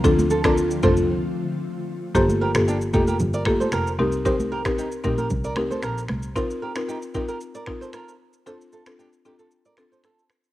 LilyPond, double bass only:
\new Staff \with { instrumentName = "Double bass" } { \clef bass \time 4/4 \key g \minor \tempo 4 = 114 d,8. d,8. c,8 r2 | g,,8. g,,8. f,,8 g,,8. r16 f,,8 c,8~ | c,4. bes,,8 c,8. r16 bes,,8 c,8 | r1 |
r1 | }